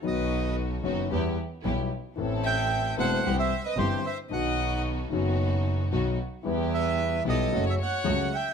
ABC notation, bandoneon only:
X:1
M:4/4
L:1/16
Q:1/4=112
K:Em
V:1 name="Bandoneon"
^d4 z12 | z2 g4 f3 e2 ^d c2 e2 | f4 z12 | z2 e4 ^d3 e f4 g2 |]